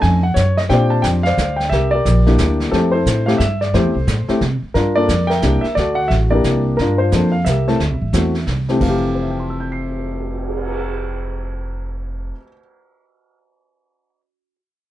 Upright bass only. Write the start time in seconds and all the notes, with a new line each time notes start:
0.03 F2
0.36 F#2
0.70 A#2
1.04 F2
1.38 D2
1.71 C2
2.05 A#1
2.38 D2
2.72 F2
3.06 A2
3.40 G2
3.74 F2
3.84 E2
3.95 C2
4.07 A2
4.29 muted upright bass stroke
4.41 C3
4.62 muted upright bass stroke
4.75 G2
5.08 F2
5.43 C2
5.77 D2
6.11 A1
6.44 C2
6.79 G2
7.12 F2
7.46 C2
7.79 D2
7.90 C2
8.01 A1
8.13 E2
8.47 C2
8.81 F1